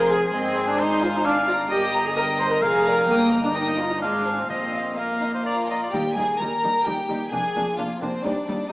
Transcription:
Already playing: F1 F2 G#4 A#4 F5
0.11 G#4 C5 G#5
0.34 G#1 G#2 C4 G#4 D#5 C6
0.56 C5 G#5
0.69 D4
0.79 D#4 G#4 C5 D#5 C6
1.02 F4 C5 G#5
1.15 D#4
1.25 D4 D5 F5 G#5
1.48 F4 D5 F5 A#5
1.71 G1 G2 G4 A#4 D#5 G5 D#6
1.94 D#5 A#5
2.06 G#4
2.16 A#4 D#5 G5 D#6
2.39 C5 D#5 A#5
2.51 A#4
2.62 F1 F2 G#4 F5 G#5 A#5
2.85 A#4 D5 G#5 A#5
3.08 G1 G2 A#3 A#4 G5 D#6
3.31 D#5 A#5
3.43 D4
3.54 D#4 A#4 D#5 G5 D#6
3.78 F4 D#5 A#5
3.90 D#4
4.01 G#1 G#2 D4 G#4 D#5 F5 C6
4.25 C5 G#5
4.38 C4
4.49 A#1 A#2 C4 D#5 F5
4.73 D#5 F5
4.97 A#3 A#4 D#5 F5
5.21 D#4 D#5 F5
5.34 C5
5.45 F4 A#4 D5 F5 A#5
5.69 D5 D#5 F5 A#5
5.83 D5
5.92 D#2 D#3 G3 D#4 G4 G5
6.15 D#2 G3 D#4 G#4 G#5
6.39 D#2 G3 D#4 A#4 A#5
6.63 D#2 G3 D#4
6.85 D#2 G3 D#4 G4 G5
7.09 D#2 G3 D#4
7.31 F1 F2 A#3 D4 G#4 G#5
7.56 F1 F2 A#3 D4
7.77 F1 F2 A#3 D4 F4 F5
8.01 F1 F2 A#3 C4 D4 C5
8.24 D#2 G3 D4 D#4 D5
8.48 D#2 G3 D#4

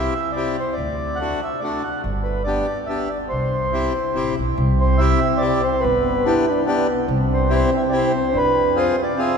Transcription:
Already playing: C4 E4 G4 E5
0.32 C4 E4 D5
0.37 G4
0.60 C5
0.73 D5
0.78 D2
1.16 F#5
1.20 A3 D4 F#4
1.43 E5
1.60 A3 D4 F#4 D5
1.83 F#5
2.04 G1
2.24 B4
2.44 B3 D4 G4 D5
2.86 B3 D4 G4 E5
3.09 D5
3.29 C2 C5
3.72 C4 E4 G4
4.14 A1 C4 E4 G4
4.39 B1
4.57 C2 C4
4.81 C5
4.98 C4 E4 G4 E5
5.38 C4 E4 D5
5.42 G4
5.64 C5
5.80 G1 B4
5.85 B3
6.24 B3 D4 E4 G4
6.51 D4
6.66 B3 D4 G4
6.70 B3
7.08 C2 C4
7.33 C5
7.48 C4 E4 G4
7.55 C5
7.77 E5
7.90 C4 E4 G4 D5
7.98 C5
8.33 F2 D4 B4
8.75 C4 F4 G#4
8.79 C5
9.03 D5
9.16 C4 F4 G#4 E5

